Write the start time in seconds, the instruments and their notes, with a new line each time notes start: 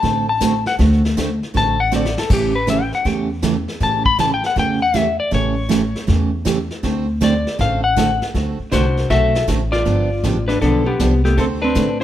Already playing: electric slide guitar A5
0.02 upright bass A1, steel-string acoustic guitar D3 A3 C4 F#4 A4, brush sweep, kick, snare
0.29 electric slide guitar A5
0.40 steel-string acoustic guitar D3 A3 C4 F#4 A4, kick, snare, hi-hat pedal
0.66 electric slide guitar F#5, snare
0.78 upright bass D2, steel-string acoustic guitar D3 A3 C4 F#4 A4, brush sweep, kick, snare
0.92 snare
1.05 snare
1.17 steel-string acoustic guitar D3 A3 C4 F#4 A4, kick, snare, hi-hat pedal
1.43 snare
1.54 upright bass A1, steel-string acoustic guitar D3 A3 C4 F#4 A4, electric slide guitar A5, brush sweep, kick, snare
1.80 electric slide guitar F#5
1.92 steel-string acoustic guitar D3 A3 C4 F#4 A4, snare, hi-hat pedal
1.96 electric slide guitar D5
2.05 snare
2.18 electric slide guitar A4, snare
2.30 upright bass A1, steel-string acoustic guitar C#3 E3 A3 C#4 G4, electric slide guitar G4, brush sweep, kick, snare, crash
2.55 electric slide guitar B4
2.67 steel-string acoustic guitar C#3 E3 A3 C#4 G4, electric slide guitar E5, kick, snare, hi-hat pedal
2.83 electric slide guitar G5
2.92 electric slide guitar F#5, snare
3.05 upright bass E2, steel-string acoustic guitar C#3 E3 A3 C#4 G4, electric slide guitar G5, brush sweep, kick, snare
3.42 steel-string acoustic guitar C#3 E3 A3 C#4 G4, kick, snare, hi-hat pedal
3.68 snare
3.80 upright bass A1, steel-string acoustic guitar C#3 E3 A3 C#4 G4, electric slide guitar A5, brush sweep, kick, snare
4.05 electric slide guitar B5, kick
4.18 steel-string acoustic guitar C#3 E3 A3 C#4 G4, electric slide guitar A5, kick, snare, hi-hat pedal
4.34 electric slide guitar G5
4.43 electric slide guitar F#5, snare
4.56 upright bass E2, steel-string acoustic guitar C#3 E3 A3 C#4 G4, electric slide guitar G5, brush sweep, kick, snare
4.82 electric slide guitar F#5
4.94 steel-string acoustic guitar C#3 E3 A3 C#4 G4, electric slide guitar E5, kick, snare, hi-hat pedal
5.20 electric slide guitar D5
5.31 upright bass A1, steel-string acoustic guitar C#3 E3 A3 C#4 G4, electric slide guitar C#5, brush sweep, kick, snare
5.69 steel-string acoustic guitar C#3 E3 A3 C#4 G4, kick, snare, hi-hat pedal
5.95 snare
6.07 upright bass E2, steel-string acoustic guitar C#3 E3 A3 C#4 G4, brush sweep, kick, snare
6.45 steel-string acoustic guitar C#3 E3 A3 C#4 G4, kick, snare, hi-hat pedal
6.70 snare
6.83 upright bass D2, steel-string acoustic guitar D3 A3 C4 F#4 A4, brush sweep, kick, snare
7.21 steel-string acoustic guitar D3 A3 C4 F#4 A4, electric slide guitar D5, kick, snare, hi-hat pedal
7.47 snare
7.59 upright bass A1, steel-string acoustic guitar D3 A3 C4 F#4 A4, electric slide guitar F5, brush sweep, kick, snare
7.84 electric slide guitar F#5
7.97 steel-string acoustic guitar D3 A3 C4 F#4 A4, kick, snare, hi-hat pedal
8.22 snare
8.35 upright bass D2, steel-string acoustic guitar D3 A3 C4 F#4 A4, brush sweep, kick, snare
8.59 muted upright bass stroke
8.72 upright bass C2, steel-string acoustic guitar D3 A3 C4 F#4 A4, hollow-body jazz guitar D4, electric slide guitar F#4 C5, kick, snare, hi-hat pedal
8.97 snare
9.10 upright bass B1, steel-string acoustic guitar D3 A3 C4 F#4 A4, hollow-body jazz guitar F#4, electric slide guitar A4 E5, brush sweep, kick, snare
9.35 snare
9.48 upright bass A1, steel-string acoustic guitar D3 A3 C4 F#4 A4, kick, snare, hi-hat pedal
9.72 electric slide guitar F4 D5, hollow-body jazz guitar F4, snare
9.85 upright bass G1, steel-string acoustic guitar D3 F3 B3 D4 G4, brush sweep, kick, snare
10.24 upright bass A1, steel-string acoustic guitar D3 F3 B3 D4 G4, kick, snare, hi-hat pedal
10.48 electric slide guitar D4 B4, hollow-body jazz guitar D4, snare
10.61 upright bass B1, steel-string acoustic guitar D3 F3 B3 D4 G4, hollow-body jazz guitar B3, electric slide guitar D4 A4, brush sweep, kick, snare
10.86 hollow-body jazz guitar B3, electric slide guitar B3 G4
10.99 upright bass C2, steel-string acoustic guitar D3 F3 B3 D4 G4, kick, snare, hi-hat pedal
11.25 hollow-body jazz guitar A3, electric slide guitar B3 G4, snare
11.37 upright bass D2, steel-string acoustic guitar D3 A3 C4 F#4 A4, electric slide guitar C4 A4, hollow-body jazz guitar C4, brush sweep, kick, snare
11.62 hollow-body jazz guitar C4, electric slide guitar D4 B4
11.75 upright bass A2, steel-string acoustic guitar D3 A3 C4 F#4 A4, kick, snare, hi-hat pedal
12.00 electric slide guitar E4